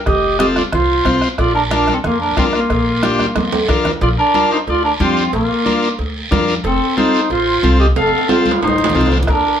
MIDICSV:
0, 0, Header, 1, 7, 480
1, 0, Start_track
1, 0, Key_signature, -2, "major"
1, 0, Tempo, 328947
1, 98, Time_signature, 4, 2, 24, 8
1, 14008, End_track
2, 0, Start_track
2, 0, Title_t, "Trumpet"
2, 0, Program_c, 0, 56
2, 95, Note_on_c, 0, 75, 83
2, 543, Note_off_c, 0, 75, 0
2, 572, Note_on_c, 0, 75, 76
2, 682, Note_off_c, 0, 75, 0
2, 817, Note_on_c, 0, 74, 79
2, 926, Note_off_c, 0, 74, 0
2, 1049, Note_on_c, 0, 72, 74
2, 1724, Note_off_c, 0, 72, 0
2, 2014, Note_on_c, 0, 74, 79
2, 2240, Note_off_c, 0, 74, 0
2, 2259, Note_on_c, 0, 70, 75
2, 2367, Note_off_c, 0, 70, 0
2, 2496, Note_on_c, 0, 70, 73
2, 2796, Note_off_c, 0, 70, 0
2, 2814, Note_on_c, 0, 69, 70
2, 2887, Note_off_c, 0, 69, 0
2, 2983, Note_on_c, 0, 65, 69
2, 3205, Note_off_c, 0, 65, 0
2, 3223, Note_on_c, 0, 70, 72
2, 3445, Note_off_c, 0, 70, 0
2, 3465, Note_on_c, 0, 65, 72
2, 3572, Note_off_c, 0, 65, 0
2, 3702, Note_on_c, 0, 65, 70
2, 5323, Note_off_c, 0, 65, 0
2, 5864, Note_on_c, 0, 74, 87
2, 5971, Note_off_c, 0, 74, 0
2, 6108, Note_on_c, 0, 70, 84
2, 6551, Note_off_c, 0, 70, 0
2, 6591, Note_on_c, 0, 72, 72
2, 6697, Note_off_c, 0, 72, 0
2, 6833, Note_on_c, 0, 74, 84
2, 7050, Note_off_c, 0, 74, 0
2, 7077, Note_on_c, 0, 70, 80
2, 7181, Note_off_c, 0, 70, 0
2, 7306, Note_on_c, 0, 65, 82
2, 7750, Note_off_c, 0, 65, 0
2, 7787, Note_on_c, 0, 65, 74
2, 8685, Note_off_c, 0, 65, 0
2, 9694, Note_on_c, 0, 69, 73
2, 10142, Note_off_c, 0, 69, 0
2, 10191, Note_on_c, 0, 72, 65
2, 10631, Note_off_c, 0, 72, 0
2, 10668, Note_on_c, 0, 72, 77
2, 11333, Note_off_c, 0, 72, 0
2, 11379, Note_on_c, 0, 75, 70
2, 11487, Note_off_c, 0, 75, 0
2, 11615, Note_on_c, 0, 77, 85
2, 12062, Note_off_c, 0, 77, 0
2, 12103, Note_on_c, 0, 72, 69
2, 12546, Note_off_c, 0, 72, 0
2, 12584, Note_on_c, 0, 72, 75
2, 13249, Note_off_c, 0, 72, 0
2, 13540, Note_on_c, 0, 70, 79
2, 13984, Note_off_c, 0, 70, 0
2, 14008, End_track
3, 0, Start_track
3, 0, Title_t, "Transistor combo organ"
3, 0, Program_c, 1, 18
3, 570, Note_on_c, 1, 60, 73
3, 577, Note_on_c, 1, 65, 70
3, 585, Note_on_c, 1, 69, 77
3, 910, Note_off_c, 1, 60, 0
3, 914, Note_off_c, 1, 65, 0
3, 918, Note_off_c, 1, 69, 0
3, 1533, Note_on_c, 1, 60, 67
3, 1539, Note_on_c, 1, 65, 60
3, 1545, Note_on_c, 1, 72, 80
3, 1872, Note_off_c, 1, 60, 0
3, 1875, Note_off_c, 1, 65, 0
3, 1878, Note_off_c, 1, 72, 0
3, 2492, Note_on_c, 1, 62, 73
3, 2498, Note_on_c, 1, 65, 69
3, 2507, Note_on_c, 1, 70, 84
3, 2832, Note_off_c, 1, 62, 0
3, 2835, Note_off_c, 1, 65, 0
3, 2839, Note_off_c, 1, 70, 0
3, 3451, Note_on_c, 1, 62, 68
3, 3458, Note_on_c, 1, 65, 63
3, 3464, Note_on_c, 1, 70, 80
3, 3792, Note_off_c, 1, 62, 0
3, 3795, Note_off_c, 1, 65, 0
3, 3798, Note_off_c, 1, 70, 0
3, 4420, Note_on_c, 1, 62, 88
3, 4426, Note_on_c, 1, 65, 77
3, 4431, Note_on_c, 1, 67, 92
3, 4756, Note_off_c, 1, 62, 0
3, 4759, Note_off_c, 1, 65, 0
3, 4762, Note_off_c, 1, 67, 0
3, 5374, Note_on_c, 1, 62, 83
3, 5379, Note_on_c, 1, 65, 77
3, 5384, Note_on_c, 1, 70, 86
3, 5713, Note_off_c, 1, 62, 0
3, 5716, Note_off_c, 1, 65, 0
3, 5718, Note_off_c, 1, 70, 0
3, 6339, Note_on_c, 1, 62, 80
3, 6346, Note_on_c, 1, 65, 70
3, 6352, Note_on_c, 1, 70, 87
3, 6676, Note_off_c, 1, 62, 0
3, 6679, Note_off_c, 1, 65, 0
3, 6683, Note_off_c, 1, 70, 0
3, 7299, Note_on_c, 1, 62, 69
3, 7306, Note_on_c, 1, 65, 65
3, 7313, Note_on_c, 1, 67, 75
3, 7636, Note_off_c, 1, 62, 0
3, 7639, Note_off_c, 1, 65, 0
3, 7643, Note_off_c, 1, 67, 0
3, 8250, Note_on_c, 1, 62, 77
3, 8257, Note_on_c, 1, 65, 72
3, 8261, Note_on_c, 1, 70, 82
3, 8591, Note_off_c, 1, 62, 0
3, 8595, Note_off_c, 1, 65, 0
3, 8596, Note_off_c, 1, 70, 0
3, 9209, Note_on_c, 1, 62, 82
3, 9217, Note_on_c, 1, 65, 71
3, 9222, Note_on_c, 1, 70, 93
3, 9550, Note_off_c, 1, 62, 0
3, 9554, Note_off_c, 1, 65, 0
3, 9556, Note_off_c, 1, 70, 0
3, 10170, Note_on_c, 1, 60, 69
3, 10177, Note_on_c, 1, 65, 63
3, 10182, Note_on_c, 1, 69, 84
3, 10510, Note_off_c, 1, 60, 0
3, 10514, Note_off_c, 1, 65, 0
3, 10516, Note_off_c, 1, 69, 0
3, 11134, Note_on_c, 1, 60, 64
3, 11141, Note_on_c, 1, 65, 64
3, 11146, Note_on_c, 1, 69, 73
3, 11472, Note_off_c, 1, 60, 0
3, 11475, Note_off_c, 1, 65, 0
3, 11477, Note_off_c, 1, 69, 0
3, 12091, Note_on_c, 1, 60, 75
3, 12096, Note_on_c, 1, 65, 70
3, 12103, Note_on_c, 1, 69, 80
3, 12430, Note_off_c, 1, 60, 0
3, 12432, Note_off_c, 1, 65, 0
3, 12436, Note_off_c, 1, 69, 0
3, 13055, Note_on_c, 1, 60, 68
3, 13062, Note_on_c, 1, 65, 63
3, 13065, Note_on_c, 1, 69, 76
3, 13391, Note_off_c, 1, 60, 0
3, 13394, Note_off_c, 1, 65, 0
3, 13396, Note_off_c, 1, 69, 0
3, 14008, End_track
4, 0, Start_track
4, 0, Title_t, "Duduk"
4, 0, Program_c, 2, 69
4, 98, Note_on_c, 2, 67, 96
4, 544, Note_off_c, 2, 67, 0
4, 571, Note_on_c, 2, 67, 105
4, 680, Note_off_c, 2, 67, 0
4, 812, Note_on_c, 2, 65, 87
4, 921, Note_off_c, 2, 65, 0
4, 1055, Note_on_c, 2, 65, 105
4, 1727, Note_off_c, 2, 65, 0
4, 2023, Note_on_c, 2, 65, 95
4, 2244, Note_off_c, 2, 65, 0
4, 2259, Note_on_c, 2, 62, 93
4, 2368, Note_off_c, 2, 62, 0
4, 2500, Note_on_c, 2, 62, 92
4, 2797, Note_off_c, 2, 62, 0
4, 2827, Note_on_c, 2, 60, 72
4, 2897, Note_off_c, 2, 60, 0
4, 2982, Note_on_c, 2, 58, 97
4, 3205, Note_off_c, 2, 58, 0
4, 3219, Note_on_c, 2, 62, 78
4, 3443, Note_off_c, 2, 62, 0
4, 3473, Note_on_c, 2, 60, 85
4, 3578, Note_off_c, 2, 60, 0
4, 3710, Note_on_c, 2, 58, 86
4, 5327, Note_off_c, 2, 58, 0
4, 5872, Note_on_c, 2, 65, 98
4, 5978, Note_off_c, 2, 65, 0
4, 6115, Note_on_c, 2, 62, 107
4, 6555, Note_off_c, 2, 62, 0
4, 6594, Note_on_c, 2, 63, 86
4, 6699, Note_off_c, 2, 63, 0
4, 6833, Note_on_c, 2, 65, 107
4, 7050, Note_off_c, 2, 65, 0
4, 7066, Note_on_c, 2, 62, 93
4, 7173, Note_off_c, 2, 62, 0
4, 7307, Note_on_c, 2, 60, 99
4, 7750, Note_off_c, 2, 60, 0
4, 7792, Note_on_c, 2, 58, 89
4, 8687, Note_off_c, 2, 58, 0
4, 9706, Note_on_c, 2, 60, 93
4, 10149, Note_off_c, 2, 60, 0
4, 10175, Note_on_c, 2, 63, 90
4, 10623, Note_off_c, 2, 63, 0
4, 10665, Note_on_c, 2, 65, 105
4, 11331, Note_off_c, 2, 65, 0
4, 11377, Note_on_c, 2, 67, 89
4, 11485, Note_off_c, 2, 67, 0
4, 11624, Note_on_c, 2, 69, 92
4, 12067, Note_off_c, 2, 69, 0
4, 12115, Note_on_c, 2, 65, 97
4, 12552, Note_off_c, 2, 65, 0
4, 12589, Note_on_c, 2, 63, 102
4, 13252, Note_off_c, 2, 63, 0
4, 13540, Note_on_c, 2, 62, 89
4, 13984, Note_off_c, 2, 62, 0
4, 14008, End_track
5, 0, Start_track
5, 0, Title_t, "Upright bass"
5, 0, Program_c, 3, 32
5, 91, Note_on_c, 3, 29, 90
5, 863, Note_off_c, 3, 29, 0
5, 1055, Note_on_c, 3, 36, 85
5, 1441, Note_off_c, 3, 36, 0
5, 1536, Note_on_c, 3, 36, 97
5, 1729, Note_off_c, 3, 36, 0
5, 2017, Note_on_c, 3, 34, 97
5, 2786, Note_off_c, 3, 34, 0
5, 2974, Note_on_c, 3, 41, 94
5, 3361, Note_off_c, 3, 41, 0
5, 3460, Note_on_c, 3, 41, 93
5, 3652, Note_off_c, 3, 41, 0
5, 3941, Note_on_c, 3, 34, 87
5, 4709, Note_off_c, 3, 34, 0
5, 4897, Note_on_c, 3, 41, 87
5, 5283, Note_off_c, 3, 41, 0
5, 5379, Note_on_c, 3, 41, 97
5, 5572, Note_off_c, 3, 41, 0
5, 5853, Note_on_c, 3, 34, 108
5, 6048, Note_off_c, 3, 34, 0
5, 6813, Note_on_c, 3, 38, 79
5, 7200, Note_off_c, 3, 38, 0
5, 7295, Note_on_c, 3, 41, 114
5, 7681, Note_off_c, 3, 41, 0
5, 7774, Note_on_c, 3, 34, 100
5, 7968, Note_off_c, 3, 34, 0
5, 8732, Note_on_c, 3, 38, 75
5, 9119, Note_off_c, 3, 38, 0
5, 9212, Note_on_c, 3, 41, 109
5, 9599, Note_off_c, 3, 41, 0
5, 9685, Note_on_c, 3, 29, 103
5, 9882, Note_off_c, 3, 29, 0
5, 10651, Note_on_c, 3, 33, 75
5, 11037, Note_off_c, 3, 33, 0
5, 11134, Note_on_c, 3, 36, 112
5, 11519, Note_off_c, 3, 36, 0
5, 11615, Note_on_c, 3, 29, 102
5, 11808, Note_off_c, 3, 29, 0
5, 12577, Note_on_c, 3, 33, 86
5, 12960, Note_off_c, 3, 33, 0
5, 13056, Note_on_c, 3, 36, 107
5, 13439, Note_off_c, 3, 36, 0
5, 13536, Note_on_c, 3, 39, 104
5, 13727, Note_off_c, 3, 39, 0
5, 14008, End_track
6, 0, Start_track
6, 0, Title_t, "Two-headed folk drums"
6, 90, Note_on_c, 9, 37, 76
6, 93, Note_on_c, 9, 36, 80
6, 236, Note_off_c, 9, 37, 0
6, 239, Note_off_c, 9, 36, 0
6, 570, Note_on_c, 9, 37, 85
6, 715, Note_off_c, 9, 37, 0
6, 816, Note_on_c, 9, 37, 82
6, 962, Note_off_c, 9, 37, 0
6, 1057, Note_on_c, 9, 37, 89
6, 1203, Note_off_c, 9, 37, 0
6, 1535, Note_on_c, 9, 37, 76
6, 1537, Note_on_c, 9, 36, 69
6, 1681, Note_off_c, 9, 37, 0
6, 1683, Note_off_c, 9, 36, 0
6, 1771, Note_on_c, 9, 37, 79
6, 1917, Note_off_c, 9, 37, 0
6, 2016, Note_on_c, 9, 37, 77
6, 2019, Note_on_c, 9, 36, 73
6, 2162, Note_off_c, 9, 37, 0
6, 2164, Note_off_c, 9, 36, 0
6, 2497, Note_on_c, 9, 37, 82
6, 2643, Note_off_c, 9, 37, 0
6, 2735, Note_on_c, 9, 37, 80
6, 2881, Note_off_c, 9, 37, 0
6, 2978, Note_on_c, 9, 37, 86
6, 3123, Note_off_c, 9, 37, 0
6, 3457, Note_on_c, 9, 37, 75
6, 3459, Note_on_c, 9, 36, 70
6, 3603, Note_off_c, 9, 37, 0
6, 3605, Note_off_c, 9, 36, 0
6, 3691, Note_on_c, 9, 37, 79
6, 3837, Note_off_c, 9, 37, 0
6, 3938, Note_on_c, 9, 37, 73
6, 3940, Note_on_c, 9, 36, 77
6, 4084, Note_off_c, 9, 37, 0
6, 4086, Note_off_c, 9, 36, 0
6, 4417, Note_on_c, 9, 37, 86
6, 4563, Note_off_c, 9, 37, 0
6, 4657, Note_on_c, 9, 37, 79
6, 4803, Note_off_c, 9, 37, 0
6, 4896, Note_on_c, 9, 37, 83
6, 5042, Note_off_c, 9, 37, 0
6, 5377, Note_on_c, 9, 37, 75
6, 5380, Note_on_c, 9, 36, 76
6, 5523, Note_off_c, 9, 37, 0
6, 5526, Note_off_c, 9, 36, 0
6, 5618, Note_on_c, 9, 37, 78
6, 5764, Note_off_c, 9, 37, 0
6, 13532, Note_on_c, 9, 37, 84
6, 13538, Note_on_c, 9, 36, 81
6, 13678, Note_off_c, 9, 37, 0
6, 13684, Note_off_c, 9, 36, 0
6, 14008, End_track
7, 0, Start_track
7, 0, Title_t, "Drums"
7, 98, Note_on_c, 9, 56, 98
7, 99, Note_on_c, 9, 64, 69
7, 102, Note_on_c, 9, 74, 58
7, 244, Note_off_c, 9, 56, 0
7, 245, Note_off_c, 9, 64, 0
7, 248, Note_off_c, 9, 74, 0
7, 340, Note_on_c, 9, 63, 32
7, 486, Note_off_c, 9, 63, 0
7, 580, Note_on_c, 9, 56, 77
7, 581, Note_on_c, 9, 73, 74
7, 583, Note_on_c, 9, 63, 92
7, 726, Note_off_c, 9, 56, 0
7, 727, Note_off_c, 9, 73, 0
7, 728, Note_off_c, 9, 63, 0
7, 821, Note_on_c, 9, 73, 69
7, 823, Note_on_c, 9, 63, 70
7, 967, Note_off_c, 9, 73, 0
7, 969, Note_off_c, 9, 63, 0
7, 1060, Note_on_c, 9, 74, 70
7, 1061, Note_on_c, 9, 63, 36
7, 1061, Note_on_c, 9, 64, 91
7, 1062, Note_on_c, 9, 56, 73
7, 1206, Note_off_c, 9, 74, 0
7, 1207, Note_off_c, 9, 56, 0
7, 1207, Note_off_c, 9, 63, 0
7, 1207, Note_off_c, 9, 64, 0
7, 1537, Note_on_c, 9, 73, 67
7, 1539, Note_on_c, 9, 63, 82
7, 1543, Note_on_c, 9, 56, 66
7, 1543, Note_on_c, 9, 66, 68
7, 1683, Note_off_c, 9, 73, 0
7, 1685, Note_off_c, 9, 63, 0
7, 1689, Note_off_c, 9, 56, 0
7, 1689, Note_off_c, 9, 66, 0
7, 1777, Note_on_c, 9, 73, 65
7, 1923, Note_off_c, 9, 73, 0
7, 2019, Note_on_c, 9, 74, 67
7, 2025, Note_on_c, 9, 56, 103
7, 2165, Note_off_c, 9, 74, 0
7, 2171, Note_off_c, 9, 56, 0
7, 2261, Note_on_c, 9, 63, 33
7, 2407, Note_off_c, 9, 63, 0
7, 2500, Note_on_c, 9, 56, 74
7, 2500, Note_on_c, 9, 63, 88
7, 2503, Note_on_c, 9, 73, 69
7, 2646, Note_off_c, 9, 56, 0
7, 2646, Note_off_c, 9, 63, 0
7, 2648, Note_off_c, 9, 73, 0
7, 2742, Note_on_c, 9, 63, 74
7, 2742, Note_on_c, 9, 73, 65
7, 2888, Note_off_c, 9, 63, 0
7, 2888, Note_off_c, 9, 73, 0
7, 2981, Note_on_c, 9, 63, 36
7, 2981, Note_on_c, 9, 64, 83
7, 2983, Note_on_c, 9, 74, 70
7, 2987, Note_on_c, 9, 56, 72
7, 3127, Note_off_c, 9, 63, 0
7, 3127, Note_off_c, 9, 64, 0
7, 3129, Note_off_c, 9, 74, 0
7, 3133, Note_off_c, 9, 56, 0
7, 3460, Note_on_c, 9, 73, 66
7, 3462, Note_on_c, 9, 56, 69
7, 3462, Note_on_c, 9, 66, 73
7, 3464, Note_on_c, 9, 63, 87
7, 3606, Note_off_c, 9, 73, 0
7, 3608, Note_off_c, 9, 56, 0
7, 3608, Note_off_c, 9, 66, 0
7, 3610, Note_off_c, 9, 63, 0
7, 3700, Note_on_c, 9, 73, 67
7, 3846, Note_off_c, 9, 73, 0
7, 3944, Note_on_c, 9, 56, 105
7, 3944, Note_on_c, 9, 74, 62
7, 4090, Note_off_c, 9, 56, 0
7, 4090, Note_off_c, 9, 74, 0
7, 4185, Note_on_c, 9, 63, 33
7, 4331, Note_off_c, 9, 63, 0
7, 4421, Note_on_c, 9, 73, 68
7, 4422, Note_on_c, 9, 63, 92
7, 4425, Note_on_c, 9, 56, 75
7, 4567, Note_off_c, 9, 73, 0
7, 4568, Note_off_c, 9, 63, 0
7, 4571, Note_off_c, 9, 56, 0
7, 4659, Note_on_c, 9, 63, 68
7, 4666, Note_on_c, 9, 73, 65
7, 4805, Note_off_c, 9, 63, 0
7, 4811, Note_off_c, 9, 73, 0
7, 4898, Note_on_c, 9, 56, 82
7, 4898, Note_on_c, 9, 65, 67
7, 4902, Note_on_c, 9, 63, 100
7, 4904, Note_on_c, 9, 74, 69
7, 5044, Note_off_c, 9, 56, 0
7, 5044, Note_off_c, 9, 65, 0
7, 5048, Note_off_c, 9, 63, 0
7, 5050, Note_off_c, 9, 74, 0
7, 5142, Note_on_c, 9, 63, 74
7, 5143, Note_on_c, 9, 65, 94
7, 5288, Note_off_c, 9, 63, 0
7, 5289, Note_off_c, 9, 65, 0
7, 5378, Note_on_c, 9, 56, 70
7, 5382, Note_on_c, 9, 64, 74
7, 5382, Note_on_c, 9, 73, 67
7, 5524, Note_off_c, 9, 56, 0
7, 5528, Note_off_c, 9, 64, 0
7, 5528, Note_off_c, 9, 73, 0
7, 5619, Note_on_c, 9, 64, 82
7, 5621, Note_on_c, 9, 66, 75
7, 5623, Note_on_c, 9, 73, 65
7, 5765, Note_off_c, 9, 64, 0
7, 5767, Note_off_c, 9, 66, 0
7, 5769, Note_off_c, 9, 73, 0
7, 5859, Note_on_c, 9, 56, 113
7, 5861, Note_on_c, 9, 74, 61
7, 5866, Note_on_c, 9, 63, 34
7, 6005, Note_off_c, 9, 56, 0
7, 6007, Note_off_c, 9, 74, 0
7, 6012, Note_off_c, 9, 63, 0
7, 6337, Note_on_c, 9, 63, 84
7, 6340, Note_on_c, 9, 73, 70
7, 6483, Note_off_c, 9, 63, 0
7, 6486, Note_off_c, 9, 73, 0
7, 6582, Note_on_c, 9, 73, 62
7, 6728, Note_off_c, 9, 73, 0
7, 6820, Note_on_c, 9, 74, 67
7, 6821, Note_on_c, 9, 63, 36
7, 6826, Note_on_c, 9, 56, 91
7, 6965, Note_off_c, 9, 74, 0
7, 6967, Note_off_c, 9, 63, 0
7, 6972, Note_off_c, 9, 56, 0
7, 7297, Note_on_c, 9, 63, 89
7, 7303, Note_on_c, 9, 73, 69
7, 7443, Note_off_c, 9, 63, 0
7, 7449, Note_off_c, 9, 73, 0
7, 7541, Note_on_c, 9, 73, 66
7, 7687, Note_off_c, 9, 73, 0
7, 7780, Note_on_c, 9, 56, 110
7, 7781, Note_on_c, 9, 63, 35
7, 7787, Note_on_c, 9, 74, 65
7, 7926, Note_off_c, 9, 56, 0
7, 7927, Note_off_c, 9, 63, 0
7, 7933, Note_off_c, 9, 74, 0
7, 8261, Note_on_c, 9, 63, 86
7, 8263, Note_on_c, 9, 73, 78
7, 8407, Note_off_c, 9, 63, 0
7, 8409, Note_off_c, 9, 73, 0
7, 8499, Note_on_c, 9, 73, 66
7, 8644, Note_off_c, 9, 73, 0
7, 8738, Note_on_c, 9, 56, 80
7, 8738, Note_on_c, 9, 74, 67
7, 8740, Note_on_c, 9, 63, 37
7, 8883, Note_off_c, 9, 56, 0
7, 8884, Note_off_c, 9, 74, 0
7, 8886, Note_off_c, 9, 63, 0
7, 9216, Note_on_c, 9, 66, 73
7, 9220, Note_on_c, 9, 73, 73
7, 9223, Note_on_c, 9, 63, 93
7, 9223, Note_on_c, 9, 64, 97
7, 9362, Note_off_c, 9, 66, 0
7, 9365, Note_off_c, 9, 73, 0
7, 9369, Note_off_c, 9, 63, 0
7, 9369, Note_off_c, 9, 64, 0
7, 9458, Note_on_c, 9, 73, 71
7, 9604, Note_off_c, 9, 73, 0
7, 9697, Note_on_c, 9, 63, 38
7, 9698, Note_on_c, 9, 56, 109
7, 9700, Note_on_c, 9, 74, 69
7, 9843, Note_off_c, 9, 63, 0
7, 9844, Note_off_c, 9, 56, 0
7, 9846, Note_off_c, 9, 74, 0
7, 10179, Note_on_c, 9, 63, 85
7, 10181, Note_on_c, 9, 73, 80
7, 10325, Note_off_c, 9, 63, 0
7, 10327, Note_off_c, 9, 73, 0
7, 10422, Note_on_c, 9, 73, 72
7, 10568, Note_off_c, 9, 73, 0
7, 10657, Note_on_c, 9, 56, 87
7, 10664, Note_on_c, 9, 63, 37
7, 10664, Note_on_c, 9, 74, 77
7, 10802, Note_off_c, 9, 56, 0
7, 10810, Note_off_c, 9, 63, 0
7, 10810, Note_off_c, 9, 74, 0
7, 11142, Note_on_c, 9, 73, 70
7, 11144, Note_on_c, 9, 63, 97
7, 11288, Note_off_c, 9, 73, 0
7, 11290, Note_off_c, 9, 63, 0
7, 11379, Note_on_c, 9, 73, 71
7, 11525, Note_off_c, 9, 73, 0
7, 11618, Note_on_c, 9, 74, 65
7, 11619, Note_on_c, 9, 56, 108
7, 11619, Note_on_c, 9, 65, 99
7, 11623, Note_on_c, 9, 63, 38
7, 11764, Note_off_c, 9, 74, 0
7, 11765, Note_off_c, 9, 56, 0
7, 11765, Note_off_c, 9, 65, 0
7, 11769, Note_off_c, 9, 63, 0
7, 11780, Note_on_c, 9, 65, 80
7, 11926, Note_off_c, 9, 65, 0
7, 11938, Note_on_c, 9, 65, 83
7, 12084, Note_off_c, 9, 65, 0
7, 12099, Note_on_c, 9, 63, 83
7, 12101, Note_on_c, 9, 65, 102
7, 12102, Note_on_c, 9, 73, 80
7, 12245, Note_off_c, 9, 63, 0
7, 12247, Note_off_c, 9, 65, 0
7, 12248, Note_off_c, 9, 73, 0
7, 12339, Note_on_c, 9, 63, 100
7, 12341, Note_on_c, 9, 73, 65
7, 12420, Note_on_c, 9, 66, 102
7, 12485, Note_off_c, 9, 63, 0
7, 12487, Note_off_c, 9, 73, 0
7, 12566, Note_off_c, 9, 66, 0
7, 12584, Note_on_c, 9, 74, 68
7, 12587, Note_on_c, 9, 56, 80
7, 12587, Note_on_c, 9, 66, 104
7, 12658, Note_on_c, 9, 63, 102
7, 12730, Note_off_c, 9, 74, 0
7, 12733, Note_off_c, 9, 56, 0
7, 12733, Note_off_c, 9, 66, 0
7, 12804, Note_off_c, 9, 63, 0
7, 12817, Note_on_c, 9, 63, 70
7, 12901, Note_on_c, 9, 66, 117
7, 12963, Note_off_c, 9, 63, 0
7, 12982, Note_on_c, 9, 64, 100
7, 13047, Note_off_c, 9, 66, 0
7, 13064, Note_on_c, 9, 73, 72
7, 13128, Note_off_c, 9, 64, 0
7, 13144, Note_on_c, 9, 64, 77
7, 13209, Note_off_c, 9, 73, 0
7, 13221, Note_on_c, 9, 66, 101
7, 13290, Note_off_c, 9, 64, 0
7, 13303, Note_on_c, 9, 64, 71
7, 13303, Note_on_c, 9, 73, 69
7, 13367, Note_off_c, 9, 66, 0
7, 13385, Note_on_c, 9, 66, 76
7, 13449, Note_off_c, 9, 64, 0
7, 13449, Note_off_c, 9, 73, 0
7, 13463, Note_on_c, 9, 64, 72
7, 13531, Note_off_c, 9, 66, 0
7, 13539, Note_on_c, 9, 74, 72
7, 13542, Note_on_c, 9, 63, 36
7, 13545, Note_on_c, 9, 56, 109
7, 13609, Note_off_c, 9, 64, 0
7, 13685, Note_off_c, 9, 74, 0
7, 13688, Note_off_c, 9, 63, 0
7, 13691, Note_off_c, 9, 56, 0
7, 14008, End_track
0, 0, End_of_file